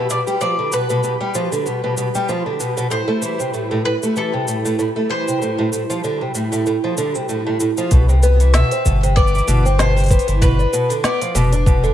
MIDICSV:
0, 0, Header, 1, 6, 480
1, 0, Start_track
1, 0, Key_signature, 0, "major"
1, 0, Tempo, 625000
1, 319, Time_signature, 4, 2, 24, 8
1, 9168, End_track
2, 0, Start_track
2, 0, Title_t, "Synth texture"
2, 0, Program_c, 0, 99
2, 0, Note_on_c, 0, 67, 69
2, 0, Note_on_c, 0, 83, 62
2, 6091, Note_off_c, 0, 67, 0
2, 6092, Note_off_c, 0, 83, 0
2, 9168, End_track
3, 0, Start_track
3, 0, Title_t, "Mandolin"
3, 0, Program_c, 1, 25
3, 0, Note_on_c, 1, 76, 86
3, 78, Note_off_c, 1, 76, 0
3, 81, Note_on_c, 1, 74, 77
3, 146, Note_off_c, 1, 74, 0
3, 315, Note_on_c, 1, 74, 74
3, 540, Note_off_c, 1, 74, 0
3, 564, Note_on_c, 1, 71, 69
3, 1491, Note_off_c, 1, 71, 0
3, 2237, Note_on_c, 1, 72, 79
3, 2687, Note_off_c, 1, 72, 0
3, 2960, Note_on_c, 1, 71, 92
3, 3024, Note_off_c, 1, 71, 0
3, 3207, Note_on_c, 1, 69, 77
3, 3920, Note_on_c, 1, 72, 91
3, 3944, Note_off_c, 1, 69, 0
3, 5568, Note_off_c, 1, 72, 0
3, 6558, Note_on_c, 1, 76, 95
3, 7031, Note_off_c, 1, 76, 0
3, 7034, Note_on_c, 1, 74, 97
3, 7524, Note_off_c, 1, 74, 0
3, 7527, Note_on_c, 1, 72, 88
3, 7972, Note_off_c, 1, 72, 0
3, 8003, Note_on_c, 1, 71, 81
3, 8483, Note_off_c, 1, 71, 0
3, 8486, Note_on_c, 1, 74, 84
3, 9168, Note_off_c, 1, 74, 0
3, 9168, End_track
4, 0, Start_track
4, 0, Title_t, "Twelve-string acoustic guitar"
4, 0, Program_c, 2, 25
4, 76, Note_on_c, 2, 47, 58
4, 154, Note_off_c, 2, 47, 0
4, 208, Note_on_c, 2, 55, 82
4, 306, Note_off_c, 2, 55, 0
4, 316, Note_on_c, 2, 53, 87
4, 438, Note_off_c, 2, 53, 0
4, 451, Note_on_c, 2, 50, 62
4, 552, Note_off_c, 2, 50, 0
4, 556, Note_on_c, 2, 47, 66
4, 678, Note_off_c, 2, 47, 0
4, 690, Note_on_c, 2, 47, 90
4, 786, Note_off_c, 2, 47, 0
4, 796, Note_on_c, 2, 47, 62
4, 874, Note_off_c, 2, 47, 0
4, 926, Note_on_c, 2, 55, 88
4, 1024, Note_off_c, 2, 55, 0
4, 1036, Note_on_c, 2, 53, 85
4, 1158, Note_off_c, 2, 53, 0
4, 1166, Note_on_c, 2, 50, 66
4, 1270, Note_off_c, 2, 50, 0
4, 1274, Note_on_c, 2, 47, 65
4, 1397, Note_off_c, 2, 47, 0
4, 1411, Note_on_c, 2, 47, 79
4, 1507, Note_off_c, 2, 47, 0
4, 1516, Note_on_c, 2, 47, 68
4, 1594, Note_off_c, 2, 47, 0
4, 1651, Note_on_c, 2, 55, 86
4, 1747, Note_off_c, 2, 55, 0
4, 1757, Note_on_c, 2, 53, 92
4, 1879, Note_off_c, 2, 53, 0
4, 1889, Note_on_c, 2, 50, 64
4, 1991, Note_off_c, 2, 50, 0
4, 1996, Note_on_c, 2, 47, 62
4, 2118, Note_off_c, 2, 47, 0
4, 2129, Note_on_c, 2, 47, 84
4, 2226, Note_off_c, 2, 47, 0
4, 2229, Note_on_c, 2, 45, 68
4, 2311, Note_off_c, 2, 45, 0
4, 2363, Note_on_c, 2, 57, 92
4, 2463, Note_off_c, 2, 57, 0
4, 2471, Note_on_c, 2, 52, 85
4, 2596, Note_off_c, 2, 52, 0
4, 2607, Note_on_c, 2, 48, 67
4, 2710, Note_off_c, 2, 48, 0
4, 2714, Note_on_c, 2, 45, 66
4, 2838, Note_off_c, 2, 45, 0
4, 2849, Note_on_c, 2, 45, 95
4, 2946, Note_off_c, 2, 45, 0
4, 2954, Note_on_c, 2, 45, 63
4, 3033, Note_off_c, 2, 45, 0
4, 3094, Note_on_c, 2, 57, 88
4, 3188, Note_off_c, 2, 57, 0
4, 3197, Note_on_c, 2, 52, 78
4, 3319, Note_off_c, 2, 52, 0
4, 3329, Note_on_c, 2, 48, 64
4, 3431, Note_off_c, 2, 48, 0
4, 3436, Note_on_c, 2, 45, 69
4, 3558, Note_off_c, 2, 45, 0
4, 3571, Note_on_c, 2, 45, 79
4, 3667, Note_off_c, 2, 45, 0
4, 3677, Note_on_c, 2, 45, 70
4, 3754, Note_off_c, 2, 45, 0
4, 3809, Note_on_c, 2, 57, 84
4, 3906, Note_off_c, 2, 57, 0
4, 3913, Note_on_c, 2, 52, 90
4, 4037, Note_off_c, 2, 52, 0
4, 4055, Note_on_c, 2, 48, 66
4, 4154, Note_off_c, 2, 48, 0
4, 4160, Note_on_c, 2, 45, 69
4, 4280, Note_off_c, 2, 45, 0
4, 4289, Note_on_c, 2, 45, 89
4, 4384, Note_off_c, 2, 45, 0
4, 4393, Note_on_c, 2, 45, 63
4, 4472, Note_off_c, 2, 45, 0
4, 4529, Note_on_c, 2, 53, 92
4, 4626, Note_off_c, 2, 53, 0
4, 4638, Note_on_c, 2, 50, 82
4, 4759, Note_off_c, 2, 50, 0
4, 4771, Note_on_c, 2, 48, 70
4, 4871, Note_off_c, 2, 48, 0
4, 4874, Note_on_c, 2, 45, 70
4, 4997, Note_off_c, 2, 45, 0
4, 5007, Note_on_c, 2, 45, 81
4, 5105, Note_off_c, 2, 45, 0
4, 5119, Note_on_c, 2, 45, 71
4, 5195, Note_off_c, 2, 45, 0
4, 5252, Note_on_c, 2, 53, 92
4, 5347, Note_off_c, 2, 53, 0
4, 5359, Note_on_c, 2, 50, 92
4, 5480, Note_off_c, 2, 50, 0
4, 5493, Note_on_c, 2, 48, 59
4, 5593, Note_off_c, 2, 48, 0
4, 5598, Note_on_c, 2, 45, 72
4, 5719, Note_off_c, 2, 45, 0
4, 5733, Note_on_c, 2, 45, 87
4, 5828, Note_off_c, 2, 45, 0
4, 5838, Note_on_c, 2, 45, 68
4, 5915, Note_off_c, 2, 45, 0
4, 5973, Note_on_c, 2, 53, 91
4, 6068, Note_off_c, 2, 53, 0
4, 6080, Note_on_c, 2, 47, 74
4, 6200, Note_off_c, 2, 47, 0
4, 6211, Note_on_c, 2, 48, 68
4, 6312, Note_off_c, 2, 48, 0
4, 6321, Note_on_c, 2, 59, 91
4, 6441, Note_off_c, 2, 59, 0
4, 6455, Note_on_c, 2, 52, 76
4, 6549, Note_off_c, 2, 52, 0
4, 6559, Note_on_c, 2, 47, 94
4, 6680, Note_off_c, 2, 47, 0
4, 6696, Note_on_c, 2, 60, 76
4, 6789, Note_off_c, 2, 60, 0
4, 6801, Note_on_c, 2, 47, 78
4, 6921, Note_off_c, 2, 47, 0
4, 6936, Note_on_c, 2, 48, 74
4, 7035, Note_off_c, 2, 48, 0
4, 7044, Note_on_c, 2, 59, 89
4, 7162, Note_off_c, 2, 59, 0
4, 7179, Note_on_c, 2, 52, 70
4, 7271, Note_off_c, 2, 52, 0
4, 7277, Note_on_c, 2, 47, 100
4, 7399, Note_off_c, 2, 47, 0
4, 7414, Note_on_c, 2, 60, 74
4, 7508, Note_off_c, 2, 60, 0
4, 7515, Note_on_c, 2, 47, 85
4, 7638, Note_off_c, 2, 47, 0
4, 7651, Note_on_c, 2, 48, 74
4, 7752, Note_off_c, 2, 48, 0
4, 7761, Note_on_c, 2, 59, 90
4, 7881, Note_off_c, 2, 59, 0
4, 7893, Note_on_c, 2, 52, 76
4, 7988, Note_off_c, 2, 52, 0
4, 7998, Note_on_c, 2, 47, 94
4, 8119, Note_off_c, 2, 47, 0
4, 8133, Note_on_c, 2, 62, 74
4, 8228, Note_off_c, 2, 62, 0
4, 8240, Note_on_c, 2, 47, 77
4, 8360, Note_off_c, 2, 47, 0
4, 8368, Note_on_c, 2, 50, 78
4, 8471, Note_off_c, 2, 50, 0
4, 8476, Note_on_c, 2, 59, 96
4, 8598, Note_off_c, 2, 59, 0
4, 8613, Note_on_c, 2, 53, 74
4, 8708, Note_off_c, 2, 53, 0
4, 8716, Note_on_c, 2, 47, 101
4, 8838, Note_off_c, 2, 47, 0
4, 8850, Note_on_c, 2, 62, 69
4, 8946, Note_off_c, 2, 62, 0
4, 8956, Note_on_c, 2, 47, 82
4, 9078, Note_off_c, 2, 47, 0
4, 9089, Note_on_c, 2, 50, 69
4, 9168, Note_off_c, 2, 50, 0
4, 9168, End_track
5, 0, Start_track
5, 0, Title_t, "Sub bass"
5, 0, Program_c, 3, 38
5, 6077, Note_on_c, 3, 36, 101
5, 6628, Note_off_c, 3, 36, 0
5, 6799, Note_on_c, 3, 31, 89
5, 7229, Note_off_c, 3, 31, 0
5, 7276, Note_on_c, 3, 31, 106
5, 7828, Note_off_c, 3, 31, 0
5, 7893, Note_on_c, 3, 31, 87
5, 8188, Note_off_c, 3, 31, 0
5, 8712, Note_on_c, 3, 29, 89
5, 9145, Note_off_c, 3, 29, 0
5, 9168, End_track
6, 0, Start_track
6, 0, Title_t, "Drums"
6, 76, Note_on_c, 9, 82, 64
6, 153, Note_off_c, 9, 82, 0
6, 211, Note_on_c, 9, 82, 37
6, 287, Note_off_c, 9, 82, 0
6, 315, Note_on_c, 9, 82, 27
6, 392, Note_off_c, 9, 82, 0
6, 556, Note_on_c, 9, 82, 63
6, 632, Note_off_c, 9, 82, 0
6, 689, Note_on_c, 9, 82, 35
6, 766, Note_off_c, 9, 82, 0
6, 794, Note_on_c, 9, 82, 27
6, 871, Note_off_c, 9, 82, 0
6, 1033, Note_on_c, 9, 82, 66
6, 1110, Note_off_c, 9, 82, 0
6, 1171, Note_on_c, 9, 82, 40
6, 1248, Note_off_c, 9, 82, 0
6, 1277, Note_on_c, 9, 82, 29
6, 1353, Note_off_c, 9, 82, 0
6, 1515, Note_on_c, 9, 82, 64
6, 1592, Note_off_c, 9, 82, 0
6, 1649, Note_on_c, 9, 82, 35
6, 1726, Note_off_c, 9, 82, 0
6, 1757, Note_on_c, 9, 82, 27
6, 1834, Note_off_c, 9, 82, 0
6, 1998, Note_on_c, 9, 82, 62
6, 2074, Note_off_c, 9, 82, 0
6, 2131, Note_on_c, 9, 82, 37
6, 2207, Note_off_c, 9, 82, 0
6, 2235, Note_on_c, 9, 82, 29
6, 2312, Note_off_c, 9, 82, 0
6, 2476, Note_on_c, 9, 82, 63
6, 2553, Note_off_c, 9, 82, 0
6, 2610, Note_on_c, 9, 82, 33
6, 2687, Note_off_c, 9, 82, 0
6, 2717, Note_on_c, 9, 82, 26
6, 2794, Note_off_c, 9, 82, 0
6, 3093, Note_on_c, 9, 82, 38
6, 3170, Note_off_c, 9, 82, 0
6, 3198, Note_on_c, 9, 82, 27
6, 3274, Note_off_c, 9, 82, 0
6, 3439, Note_on_c, 9, 82, 65
6, 3516, Note_off_c, 9, 82, 0
6, 3575, Note_on_c, 9, 82, 38
6, 3652, Note_off_c, 9, 82, 0
6, 3680, Note_on_c, 9, 82, 28
6, 3757, Note_off_c, 9, 82, 0
6, 4056, Note_on_c, 9, 82, 41
6, 4133, Note_off_c, 9, 82, 0
6, 4164, Note_on_c, 9, 82, 29
6, 4240, Note_off_c, 9, 82, 0
6, 4400, Note_on_c, 9, 82, 61
6, 4476, Note_off_c, 9, 82, 0
6, 4534, Note_on_c, 9, 82, 36
6, 4610, Note_off_c, 9, 82, 0
6, 4638, Note_on_c, 9, 82, 25
6, 4715, Note_off_c, 9, 82, 0
6, 4875, Note_on_c, 9, 82, 64
6, 4952, Note_off_c, 9, 82, 0
6, 5013, Note_on_c, 9, 82, 40
6, 5089, Note_off_c, 9, 82, 0
6, 5118, Note_on_c, 9, 82, 28
6, 5195, Note_off_c, 9, 82, 0
6, 5357, Note_on_c, 9, 82, 64
6, 5434, Note_off_c, 9, 82, 0
6, 5491, Note_on_c, 9, 82, 38
6, 5568, Note_off_c, 9, 82, 0
6, 5598, Note_on_c, 9, 82, 27
6, 5675, Note_off_c, 9, 82, 0
6, 5838, Note_on_c, 9, 82, 64
6, 5915, Note_off_c, 9, 82, 0
6, 5972, Note_on_c, 9, 82, 37
6, 6048, Note_off_c, 9, 82, 0
6, 6075, Note_on_c, 9, 46, 56
6, 6078, Note_on_c, 9, 36, 114
6, 6078, Note_on_c, 9, 82, 43
6, 6152, Note_off_c, 9, 46, 0
6, 6155, Note_off_c, 9, 36, 0
6, 6155, Note_off_c, 9, 82, 0
6, 6214, Note_on_c, 9, 82, 23
6, 6290, Note_off_c, 9, 82, 0
6, 6318, Note_on_c, 9, 46, 30
6, 6321, Note_on_c, 9, 82, 72
6, 6395, Note_off_c, 9, 46, 0
6, 6397, Note_off_c, 9, 82, 0
6, 6452, Note_on_c, 9, 46, 43
6, 6455, Note_on_c, 9, 82, 30
6, 6529, Note_off_c, 9, 46, 0
6, 6531, Note_off_c, 9, 82, 0
6, 6556, Note_on_c, 9, 38, 99
6, 6556, Note_on_c, 9, 46, 54
6, 6559, Note_on_c, 9, 82, 40
6, 6633, Note_off_c, 9, 38, 0
6, 6633, Note_off_c, 9, 46, 0
6, 6636, Note_off_c, 9, 82, 0
6, 6693, Note_on_c, 9, 46, 59
6, 6696, Note_on_c, 9, 82, 22
6, 6770, Note_off_c, 9, 46, 0
6, 6772, Note_off_c, 9, 82, 0
6, 6800, Note_on_c, 9, 36, 58
6, 6803, Note_on_c, 9, 82, 73
6, 6877, Note_off_c, 9, 36, 0
6, 6879, Note_off_c, 9, 82, 0
6, 6939, Note_on_c, 9, 46, 45
6, 6941, Note_on_c, 9, 82, 33
6, 7016, Note_off_c, 9, 46, 0
6, 7018, Note_off_c, 9, 82, 0
6, 7041, Note_on_c, 9, 36, 120
6, 7044, Note_on_c, 9, 82, 18
6, 7118, Note_off_c, 9, 36, 0
6, 7120, Note_off_c, 9, 82, 0
6, 7123, Note_on_c, 9, 82, 27
6, 7180, Note_off_c, 9, 82, 0
6, 7180, Note_on_c, 9, 82, 19
6, 7206, Note_off_c, 9, 82, 0
6, 7206, Note_on_c, 9, 82, 31
6, 7279, Note_on_c, 9, 46, 31
6, 7282, Note_off_c, 9, 82, 0
6, 7282, Note_on_c, 9, 82, 75
6, 7356, Note_off_c, 9, 46, 0
6, 7359, Note_off_c, 9, 82, 0
6, 7418, Note_on_c, 9, 82, 31
6, 7495, Note_off_c, 9, 82, 0
6, 7520, Note_on_c, 9, 38, 102
6, 7520, Note_on_c, 9, 46, 60
6, 7523, Note_on_c, 9, 82, 43
6, 7597, Note_off_c, 9, 38, 0
6, 7597, Note_off_c, 9, 46, 0
6, 7600, Note_off_c, 9, 82, 0
6, 7658, Note_on_c, 9, 46, 20
6, 7661, Note_on_c, 9, 82, 22
6, 7673, Note_off_c, 9, 46, 0
6, 7673, Note_on_c, 9, 46, 25
6, 7682, Note_off_c, 9, 46, 0
6, 7682, Note_on_c, 9, 46, 28
6, 7708, Note_off_c, 9, 46, 0
6, 7708, Note_on_c, 9, 46, 30
6, 7728, Note_off_c, 9, 46, 0
6, 7728, Note_on_c, 9, 46, 37
6, 7738, Note_off_c, 9, 82, 0
6, 7745, Note_off_c, 9, 46, 0
6, 7745, Note_on_c, 9, 46, 38
6, 7761, Note_on_c, 9, 36, 110
6, 7762, Note_off_c, 9, 46, 0
6, 7762, Note_on_c, 9, 46, 44
6, 7765, Note_on_c, 9, 82, 72
6, 7827, Note_off_c, 9, 46, 0
6, 7827, Note_on_c, 9, 46, 53
6, 7838, Note_off_c, 9, 36, 0
6, 7842, Note_off_c, 9, 82, 0
6, 7895, Note_off_c, 9, 46, 0
6, 7895, Note_on_c, 9, 46, 48
6, 7898, Note_on_c, 9, 82, 32
6, 7972, Note_off_c, 9, 46, 0
6, 7975, Note_off_c, 9, 82, 0
6, 8001, Note_on_c, 9, 36, 118
6, 8002, Note_on_c, 9, 46, 58
6, 8005, Note_on_c, 9, 82, 47
6, 8078, Note_off_c, 9, 36, 0
6, 8079, Note_off_c, 9, 46, 0
6, 8082, Note_off_c, 9, 82, 0
6, 8140, Note_on_c, 9, 82, 22
6, 8217, Note_off_c, 9, 82, 0
6, 8242, Note_on_c, 9, 46, 29
6, 8245, Note_on_c, 9, 82, 80
6, 8319, Note_off_c, 9, 46, 0
6, 8321, Note_off_c, 9, 82, 0
6, 8374, Note_on_c, 9, 46, 45
6, 8377, Note_on_c, 9, 82, 34
6, 8451, Note_off_c, 9, 46, 0
6, 8453, Note_off_c, 9, 82, 0
6, 8478, Note_on_c, 9, 38, 100
6, 8478, Note_on_c, 9, 46, 54
6, 8481, Note_on_c, 9, 82, 43
6, 8555, Note_off_c, 9, 38, 0
6, 8555, Note_off_c, 9, 46, 0
6, 8558, Note_off_c, 9, 82, 0
6, 8613, Note_on_c, 9, 46, 56
6, 8616, Note_on_c, 9, 82, 21
6, 8690, Note_off_c, 9, 46, 0
6, 8693, Note_off_c, 9, 82, 0
6, 8719, Note_on_c, 9, 46, 27
6, 8722, Note_on_c, 9, 82, 80
6, 8796, Note_off_c, 9, 46, 0
6, 8799, Note_off_c, 9, 82, 0
6, 8852, Note_on_c, 9, 46, 46
6, 8854, Note_on_c, 9, 82, 37
6, 8928, Note_off_c, 9, 46, 0
6, 8931, Note_off_c, 9, 82, 0
6, 8959, Note_on_c, 9, 36, 127
6, 8963, Note_on_c, 9, 82, 45
6, 9036, Note_off_c, 9, 36, 0
6, 9039, Note_off_c, 9, 82, 0
6, 9094, Note_on_c, 9, 82, 22
6, 9168, Note_off_c, 9, 82, 0
6, 9168, End_track
0, 0, End_of_file